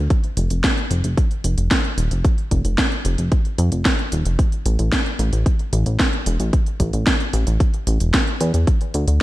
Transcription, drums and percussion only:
0.10 kick loud
0.10 closed hi-hat soft
0.24 closed hi-hat soft
0.37 closed hi-hat medium
0.50 closed hi-hat soft
0.64 kick loud
0.64 snare loud
0.64 closed hi-hat soft
0.77 closed hi-hat soft
0.91 closed hi-hat medium
1.04 closed hi-hat medium
1.17 kick loud
1.17 closed hi-hat soft
1.31 closed hi-hat soft
1.44 closed hi-hat medium
1.58 closed hi-hat soft
1.71 kick loud
1.71 snare loud
1.71 closed hi-hat medium
1.84 closed hi-hat soft
1.98 closed hi-hat medium
2.11 closed hi-hat soft
2.25 kick loud
2.25 closed hi-hat soft
2.38 closed hi-hat soft
2.51 kick medium
2.51 closed hi-hat medium
2.65 closed hi-hat soft
2.78 kick loud
2.78 snare loud
2.78 closed hi-hat soft
2.92 closed hi-hat soft
3.05 closed hi-hat medium
3.18 closed hi-hat soft
3.32 kick loud
3.32 closed hi-hat soft
3.45 closed hi-hat soft
3.58 closed hi-hat medium
3.72 closed hi-hat soft
3.85 kick loud
3.85 snare loud
3.85 closed hi-hat soft
3.99 closed hi-hat soft
4.12 closed hi-hat medium
4.25 closed hi-hat soft
4.39 kick loud
4.39 closed hi-hat soft
4.52 closed hi-hat soft
4.66 closed hi-hat medium
4.79 closed hi-hat soft
4.92 kick loud
4.92 snare loud
4.92 closed hi-hat soft
5.06 closed hi-hat soft
5.19 closed hi-hat medium
5.33 closed hi-hat soft
5.46 kick loud
5.46 closed hi-hat soft
5.59 closed hi-hat soft
5.73 closed hi-hat medium
5.86 closed hi-hat soft
6.00 kick loud
6.00 snare loud
6.00 closed hi-hat soft
6.13 closed hi-hat soft
6.26 closed hi-hat medium
6.40 closed hi-hat soft
6.53 kick loud
6.53 closed hi-hat soft
6.66 closed hi-hat soft
6.80 kick medium
6.80 closed hi-hat medium
6.93 closed hi-hat soft
7.07 kick loud
7.07 snare loud
7.07 closed hi-hat medium
7.20 closed hi-hat soft
7.33 closed hi-hat medium
7.47 closed hi-hat medium
7.60 kick loud
7.60 closed hi-hat medium
7.74 closed hi-hat soft
7.87 closed hi-hat medium
8.00 closed hi-hat soft
8.14 kick loud
8.14 snare loud
8.14 closed hi-hat medium
8.27 closed hi-hat soft
8.41 closed hi-hat loud
8.54 closed hi-hat medium
8.67 kick loud
8.67 closed hi-hat medium
8.81 closed hi-hat soft
8.94 closed hi-hat medium
9.08 closed hi-hat medium

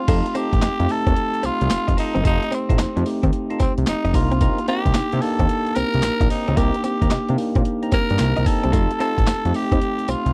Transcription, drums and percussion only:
0.08 kick loud
0.08 closed hi-hat medium
0.08 crash medium
0.08 tambourine medium
0.26 closed hi-hat medium
0.35 closed hi-hat medium
0.35 tambourine medium
0.53 kick medium
0.53 closed hi-hat medium
0.62 snare loud
0.62 clap medium
0.62 closed hi-hat medium
0.62 tambourine medium
0.80 closed hi-hat medium
0.89 open hi-hat medium
0.89 tambourine medium
1.07 kick loud
1.07 closed hi-hat soft
1.16 closed hi-hat medium
1.34 closed hi-hat soft
1.43 closed hi-hat medium
1.43 tambourine medium
1.61 closed hi-hat medium
1.70 snare loud
1.70 clap medium
1.70 closed hi-hat medium
1.70 tambourine loud
1.88 kick loud
1.88 closed hi-hat medium
1.98 open hi-hat medium
1.98 tambourine medium
2.16 closed hi-hat medium
2.25 kick loud
2.25 closed hi-hat medium
2.25 tambourine medium
2.43 closed hi-hat medium
2.52 closed hi-hat medium
2.52 tambourine medium
2.70 kick loud
2.70 closed hi-hat medium
2.79 snare loud
2.79 clap medium
2.79 closed hi-hat medium
2.79 tambourine loud
2.97 closed hi-hat medium
3.06 open hi-hat medium
3.06 tambourine medium
3.23 kick medium
3.23 closed hi-hat soft
3.33 closed hi-hat medium
3.50 closed hi-hat soft
3.60 kick medium
3.60 closed hi-hat medium
3.60 tambourine medium
3.78 closed hi-hat medium
3.87 snare loud
3.87 clap medium
3.87 closed hi-hat medium
3.87 tambourine loud
4.05 closed hi-hat medium
4.14 kick medium
4.14 open hi-hat medium
4.14 tambourine medium
4.32 closed hi-hat medium
4.41 kick loud
4.41 closed hi-hat medium
4.41 tambourine medium
4.58 closed hi-hat medium
4.68 closed hi-hat medium
4.68 tambourine medium
4.86 kick medium
4.86 closed hi-hat medium
4.94 snare loud
4.94 clap medium
4.94 closed hi-hat medium
4.94 tambourine medium
5.12 closed hi-hat medium
5.22 open hi-hat medium
5.22 tambourine medium
5.39 kick medium
5.39 closed hi-hat medium
5.49 closed hi-hat medium
5.67 closed hi-hat soft
5.75 closed hi-hat medium
5.75 tambourine medium
5.94 closed hi-hat medium
6.03 snare loud
6.03 clap medium
6.03 closed hi-hat medium
6.03 tambourine loud
6.21 kick loud
6.21 closed hi-hat medium
6.30 open hi-hat medium
6.30 tambourine medium
6.48 closed hi-hat medium
6.57 kick loud
6.57 closed hi-hat medium
6.57 tambourine medium
6.74 closed hi-hat medium
6.84 closed hi-hat medium
6.84 tambourine medium
7.02 kick medium
7.02 closed hi-hat medium
7.11 snare loud
7.11 clap medium
7.11 closed hi-hat medium
7.11 tambourine medium
7.29 closed hi-hat medium
7.38 open hi-hat medium
7.38 tambourine medium
7.55 kick medium
7.55 closed hi-hat soft
7.65 closed hi-hat medium
7.83 closed hi-hat soft
7.92 kick loud
7.92 snare medium
7.92 closed hi-hat medium
7.92 tambourine medium
8.10 closed hi-hat medium
8.19 snare loud
8.19 clap medium
8.19 closed hi-hat medium
8.19 tambourine loud
8.37 closed hi-hat medium
8.46 kick medium
8.46 open hi-hat medium
8.46 tambourine medium
8.64 closed hi-hat medium
8.73 kick loud
8.73 closed hi-hat medium
8.73 tambourine medium
8.91 closed hi-hat medium
9.00 closed hi-hat medium
9.00 tambourine medium
9.18 kick loud
9.18 closed hi-hat soft
9.27 snare loud
9.27 clap medium
9.27 closed hi-hat medium
9.27 tambourine loud
9.45 closed hi-hat medium
9.54 open hi-hat medium
9.54 tambourine medium
9.72 kick medium
9.72 closed hi-hat soft
9.81 closed hi-hat medium
9.99 closed hi-hat medium
10.08 closed hi-hat medium
10.08 tambourine medium
10.26 closed hi-hat medium

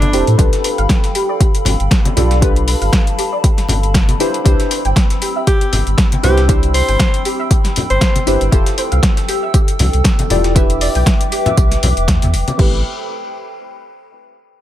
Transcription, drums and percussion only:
0.02 closed hi-hat medium
0.02 closed hi-hat soft
0.02 high conga loud
0.13 open hi-hat loud
0.13 tambourine medium
0.27 closed hi-hat soft
0.39 kick loud
0.39 closed hi-hat medium
0.39 tambourine medium
0.53 snare soft
0.53 closed hi-hat medium
0.64 open hi-hat loud
0.64 tambourine medium
0.78 closed hi-hat soft
0.89 kick loud
0.89 snare loud
0.89 closed hi-hat medium
0.89 tambourine medium
1.04 snare soft
1.04 closed hi-hat soft
1.15 open hi-hat loud
1.15 tambourine medium
1.40 kick loud
1.40 closed hi-hat medium
1.40 tambourine medium
1.55 closed hi-hat medium
1.65 snare medium
1.65 open hi-hat loud
1.65 tambourine medium
1.65 low conga loud
1.80 closed hi-hat soft
1.91 kick loud
1.91 snare loud
1.91 closed hi-hat medium
1.91 tambourine medium
2.05 closed hi-hat medium
2.05 high conga medium
2.17 open hi-hat loud
2.17 tambourine medium
2.17 low conga loud
2.31 snare medium
2.31 closed hi-hat soft
2.42 kick loud
2.42 closed hi-hat medium
2.42 tambourine medium
2.56 closed hi-hat soft
2.68 open hi-hat loud
2.68 open hi-hat medium
2.82 closed hi-hat soft
2.93 kick loud
2.93 snare loud
2.93 closed hi-hat medium
2.93 tambourine medium
3.07 closed hi-hat soft
3.19 open hi-hat loud
3.19 tambourine medium
3.44 kick loud
3.44 closed hi-hat medium
3.44 tambourine medium
3.58 snare soft
3.58 closed hi-hat medium
3.69 open hi-hat loud
3.69 tambourine medium
3.69 low conga medium
3.83 closed hi-hat soft
3.94 kick loud
3.94 snare loud
3.94 closed hi-hat medium
3.94 tambourine medium
4.09 closed hi-hat medium
4.09 closed hi-hat soft
4.09 high conga medium
4.20 open hi-hat loud
4.20 tambourine medium
4.34 closed hi-hat soft
4.46 kick loud
4.46 closed hi-hat medium
4.46 tambourine medium
4.60 snare soft
4.60 closed hi-hat medium
4.71 open hi-hat loud
4.71 tambourine medium
4.85 closed hi-hat soft
4.96 kick loud
4.96 snare loud
4.96 closed hi-hat medium
4.96 tambourine medium
5.10 snare soft
5.10 closed hi-hat soft
5.22 open hi-hat loud
5.22 tambourine medium
5.47 kick loud
5.47 closed hi-hat medium
5.47 tambourine medium
5.61 closed hi-hat medium
5.73 snare medium
5.73 open hi-hat loud
5.73 tambourine medium
5.73 low conga medium
5.87 closed hi-hat soft
5.98 kick loud
5.98 snare loud
5.98 closed hi-hat medium
5.98 tambourine medium
6.12 closed hi-hat medium
6.12 high conga medium
6.24 open hi-hat loud
6.24 tambourine medium
6.24 low conga medium
6.38 snare medium
6.38 closed hi-hat soft
6.49 kick loud
6.49 closed hi-hat medium
6.49 tambourine loud
6.63 closed hi-hat medium
6.74 open hi-hat loud
6.74 open hi-hat medium
6.89 closed hi-hat soft
6.99 kick loud
6.99 snare loud
6.99 closed hi-hat medium
6.99 tambourine medium
7.14 closed hi-hat soft
7.14 closed hi-hat medium
7.25 open hi-hat loud
7.25 tambourine medium
7.51 kick loud
7.51 closed hi-hat medium
7.51 tambourine medium
7.64 snare soft
7.64 closed hi-hat medium
7.76 open hi-hat loud
7.76 tambourine medium
7.76 low conga medium
7.90 closed hi-hat soft
8.01 kick loud
8.01 snare loud
8.01 closed hi-hat medium
8.01 tambourine medium
8.16 closed hi-hat soft
8.16 closed hi-hat medium
8.16 high conga medium
8.27 open hi-hat loud
8.27 tambourine medium
8.41 closed hi-hat soft
8.52 kick loud
8.52 closed hi-hat medium
8.52 tambourine medium
8.66 snare soft
8.66 closed hi-hat medium
8.78 open hi-hat loud
8.78 tambourine medium
8.92 closed hi-hat soft
9.03 kick loud
9.03 snare loud
9.03 closed hi-hat medium
9.03 tambourine medium
9.17 snare medium
9.17 closed hi-hat medium
9.28 open hi-hat loud
9.28 tambourine medium
9.54 kick loud
9.54 closed hi-hat medium
9.54 tambourine medium
9.68 closed hi-hat medium
9.79 snare medium
9.79 open hi-hat loud
9.79 tambourine medium
9.79 low conga medium
9.93 closed hi-hat soft
10.04 kick loud
10.04 snare loud
10.04 closed hi-hat medium
10.04 tambourine medium
10.19 closed hi-hat medium
10.19 high conga loud
10.30 open hi-hat loud
10.30 tambourine medium
10.30 low conga medium
10.44 snare medium
10.44 closed hi-hat soft
10.56 kick loud
10.56 closed hi-hat medium
10.56 tambourine loud
10.70 closed hi-hat medium
10.81 open hi-hat loud
10.81 open hi-hat medium
10.95 closed hi-hat soft
11.06 kick loud
11.06 snare loud
11.06 closed hi-hat medium
11.06 tambourine medium
11.21 closed hi-hat medium
11.21 closed hi-hat soft
11.32 open hi-hat loud
11.32 tambourine medium
11.46 closed hi-hat soft
11.46 low conga medium
11.57 kick loud
11.57 closed hi-hat medium
11.57 tambourine medium
11.71 snare soft
11.71 closed hi-hat medium
11.83 open hi-hat loud
11.83 tambourine medium
11.83 low conga medium
11.97 closed hi-hat soft
12.08 kick loud
12.08 snare loud
12.08 closed hi-hat medium
12.08 tambourine medium
12.22 closed hi-hat soft
12.22 closed hi-hat medium
12.22 high conga medium
12.34 open hi-hat loud
12.34 tambourine medium
12.48 closed hi-hat soft
12.48 high conga medium
12.59 kick loud
12.59 crash medium

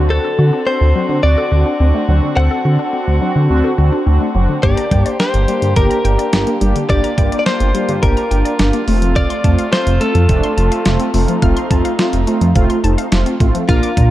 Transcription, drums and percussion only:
4.63 kick loud
4.63 closed hi-hat medium
4.77 closed hi-hat medium
4.91 kick medium
4.91 closed hi-hat medium
5.06 closed hi-hat medium
5.20 snare loud
5.20 closed hi-hat medium
5.34 closed hi-hat medium
5.48 closed hi-hat medium
5.62 closed hi-hat soft
5.76 kick loud
5.76 closed hi-hat medium
5.91 closed hi-hat soft
6.05 closed hi-hat medium
6.19 closed hi-hat medium
6.33 snare loud
6.33 closed hi-hat medium
6.47 closed hi-hat soft
6.61 closed hi-hat medium
6.76 closed hi-hat medium
6.90 kick loud
6.90 closed hi-hat medium
7.04 closed hi-hat medium
7.18 kick medium
7.18 closed hi-hat medium
7.32 closed hi-hat medium
7.46 snare loud
7.46 closed hi-hat medium
7.60 closed hi-hat medium
7.75 closed hi-hat medium
7.89 closed hi-hat soft
8.03 kick medium
8.03 closed hi-hat medium
8.17 closed hi-hat soft
8.31 closed hi-hat medium
8.46 closed hi-hat medium
8.59 snare loud
8.59 closed hi-hat medium
8.73 closed hi-hat medium
8.88 open hi-hat medium
9.02 closed hi-hat medium
9.16 kick loud
9.16 closed hi-hat medium
9.30 closed hi-hat medium
9.44 kick medium
9.44 closed hi-hat medium
9.59 closed hi-hat medium
9.72 snare loud
9.72 closed hi-hat medium
9.87 closed hi-hat medium
10.01 closed hi-hat medium
10.15 closed hi-hat soft
10.29 kick medium
10.29 closed hi-hat medium
10.43 closed hi-hat soft
10.58 closed hi-hat medium
10.72 closed hi-hat medium
10.85 snare loud
10.85 closed hi-hat medium
11.00 closed hi-hat medium
11.14 open hi-hat medium
11.28 closed hi-hat medium
11.42 kick loud
11.42 closed hi-hat medium
11.57 closed hi-hat medium
11.71 kick medium
11.71 closed hi-hat medium
11.85 closed hi-hat medium
11.99 snare loud
11.99 closed hi-hat medium
12.13 closed hi-hat medium
12.27 closed hi-hat medium
12.41 closed hi-hat soft
12.55 kick loud
12.55 closed hi-hat medium
12.70 closed hi-hat medium
12.84 closed hi-hat medium
12.98 closed hi-hat medium
13.12 snare loud
13.12 closed hi-hat medium
13.26 closed hi-hat soft
13.40 kick medium
13.40 closed hi-hat medium
13.55 closed hi-hat medium
13.69 kick loud
13.69 closed hi-hat medium
13.83 closed hi-hat medium
13.97 kick medium
13.97 closed hi-hat medium

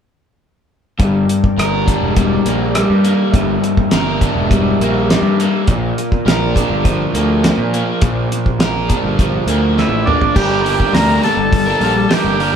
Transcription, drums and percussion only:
1.00 kick loud
1.00 closed hi-hat medium
1.29 closed hi-hat medium
1.44 kick medium
1.59 cross-stick medium
1.59 closed hi-hat medium
1.88 kick medium
1.88 closed hi-hat medium
2.17 kick medium
2.17 closed hi-hat medium
2.46 closed hi-hat soft
2.75 cross-stick medium
2.75 closed hi-hat medium
3.05 closed hi-hat medium
3.34 kick loud
3.34 closed hi-hat medium
3.64 closed hi-hat medium
3.77 kick medium
3.91 snare medium
3.91 closed hi-hat medium
4.21 kick medium
4.21 closed hi-hat medium
4.51 kick medium
4.51 closed hi-hat medium
4.81 closed hi-hat soft
5.10 snare medium
5.10 closed hi-hat medium
5.40 closed hi-hat soft
5.67 kick loud
5.67 closed hi-hat medium
5.98 closed hi-hat medium
6.12 kick medium
6.28 snare loud
6.28 closed hi-hat medium
6.56 kick medium
6.56 closed hi-hat medium
6.85 kick medium
6.85 closed hi-hat medium
7.15 closed hi-hat soft
7.44 snare medium
7.44 closed hi-hat medium
7.74 closed hi-hat soft
8.02 kick loud
8.02 closed hi-hat medium
8.32 closed hi-hat medium
8.46 kick medium
8.60 snare medium
8.60 closed hi-hat medium
8.90 kick medium
8.90 closed hi-hat medium
9.19 kick medium
9.19 closed hi-hat medium
9.48 closed hi-hat medium
9.78 snare soft
10.07 mid tom medium
10.21 floor tom medium
10.36 kick loud
10.36 crash medium
10.66 open hi-hat soft
10.80 kick medium
10.94 snare medium
10.94 open hi-hat medium
11.23 snare soft
11.23 open hi-hat soft
11.53 kick medium
11.53 open hi-hat medium
11.81 open hi-hat soft
12.11 snare medium
12.11 open hi-hat medium
12.40 open hi-hat soft

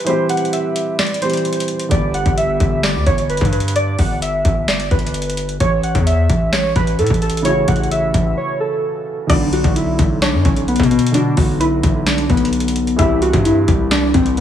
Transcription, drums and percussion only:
0.07 closed hi-hat medium
0.29 closed hi-hat medium
0.29 open hi-hat medium
0.37 closed hi-hat soft
0.45 closed hi-hat soft
0.53 closed hi-hat medium
0.76 closed hi-hat medium
0.99 snare loud
0.99 clap medium
0.99 closed hi-hat medium
1.07 closed hi-hat medium
1.14 closed hi-hat medium
1.22 closed hi-hat medium
1.30 closed hi-hat medium
1.33 closed hi-hat medium
1.37 closed hi-hat soft
1.45 closed hi-hat medium
1.53 closed hi-hat medium
1.60 closed hi-hat medium
1.68 closed hi-hat medium
1.79 closed hi-hat medium
1.91 kick loud
1.91 closed hi-hat medium
2.14 closed hi-hat medium
2.26 kick medium
2.26 closed hi-hat medium
2.38 closed hi-hat medium
2.60 kick loud
2.60 closed hi-hat medium
2.83 snare loud
2.83 clap medium
2.83 closed hi-hat medium
3.06 kick loud
3.06 closed hi-hat medium
3.18 closed hi-hat medium
3.30 closed hi-hat medium
3.37 kick loud
3.37 closed hi-hat medium
3.45 closed hi-hat medium
3.53 closed hi-hat medium
3.60 closed hi-hat medium
3.68 closed hi-hat medium
3.76 closed hi-hat medium
3.99 kick loud
3.99 open hi-hat medium
4.22 closed hi-hat medium
4.45 kick loud
4.45 closed hi-hat medium
4.68 snare loud
4.68 clap medium
4.68 closed hi-hat medium
4.80 closed hi-hat medium
4.91 kick loud
4.91 closed hi-hat soft
4.99 closed hi-hat medium
5.07 closed hi-hat medium
5.14 closed hi-hat medium
5.22 closed hi-hat medium
5.30 closed hi-hat medium
5.37 closed hi-hat medium
5.49 closed hi-hat soft
5.60 kick loud
5.60 closed hi-hat medium
5.83 closed hi-hat medium
5.95 kick medium
5.95 closed hi-hat medium
6.07 closed hi-hat medium
6.30 kick loud
6.30 closed hi-hat medium
6.53 snare loud
6.53 clap medium
6.53 closed hi-hat medium
6.76 kick loud
6.76 closed hi-hat medium
6.87 closed hi-hat medium
6.99 closed hi-hat medium
7.07 kick loud
7.07 closed hi-hat medium
7.14 closed hi-hat medium
7.22 closed hi-hat medium
7.30 closed hi-hat medium
7.37 closed hi-hat medium
7.45 closed hi-hat medium
7.68 kick loud
7.68 closed hi-hat medium
7.68 open hi-hat medium
7.76 closed hi-hat medium
7.83 closed hi-hat soft
7.91 closed hi-hat medium
8.14 kick loud
8.14 closed hi-hat medium
9.30 kick loud
9.30 closed hi-hat medium
9.30 crash loud
9.53 closed hi-hat medium
9.64 kick medium
9.64 closed hi-hat medium
9.76 closed hi-hat medium
9.99 kick loud
9.99 closed hi-hat medium
10.22 snare loud
10.22 clap medium
10.22 closed hi-hat medium
10.45 kick loud
10.45 closed hi-hat medium
10.56 closed hi-hat medium
10.68 closed hi-hat medium
10.76 kick loud
10.76 closed hi-hat medium
10.83 closed hi-hat medium
10.91 closed hi-hat medium
10.99 closed hi-hat medium
11.07 closed hi-hat medium
11.14 closed hi-hat medium
11.37 kick loud
11.37 open hi-hat medium
11.61 closed hi-hat medium
11.83 kick loud
11.83 closed hi-hat medium
12.06 snare loud
12.06 clap medium
12.06 closed hi-hat medium
12.18 closed hi-hat medium
12.30 kick loud
12.30 closed hi-hat soft
12.37 closed hi-hat medium
12.45 closed hi-hat medium
12.53 closed hi-hat medium
12.60 closed hi-hat medium
12.68 closed hi-hat medium
12.76 closed hi-hat medium
12.87 closed hi-hat soft
12.99 kick loud
12.99 closed hi-hat medium
13.22 closed hi-hat medium
13.33 kick medium
13.33 closed hi-hat medium
13.45 closed hi-hat medium
13.68 kick loud
13.68 closed hi-hat medium
13.91 snare loud
13.91 clap medium
13.91 closed hi-hat medium
14.14 kick loud
14.14 closed hi-hat medium
14.26 closed hi-hat medium
14.37 closed hi-hat medium

